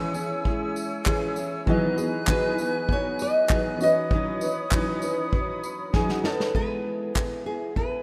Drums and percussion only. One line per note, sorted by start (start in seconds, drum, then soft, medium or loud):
0.14 tambourine medium
0.45 kick loud
0.76 tambourine medium
1.06 kick loud
1.06 clap loud
1.36 tambourine medium
1.67 kick loud
1.98 tambourine medium
2.27 kick loud
2.27 clap loud
2.58 tambourine medium
2.89 kick loud
3.19 tambourine medium
3.49 kick loud
3.49 clap loud
3.81 tambourine medium
4.11 kick loud
4.41 tambourine medium
4.71 kick loud
4.71 clap loud
5.02 tambourine medium
5.33 kick loud
5.64 tambourine medium
5.93 kick loud
5.93 snare medium
6.09 snare medium
6.24 snare medium
6.40 snare loud
6.55 kick loud
7.16 kick loud
7.16 clap loud
7.76 kick medium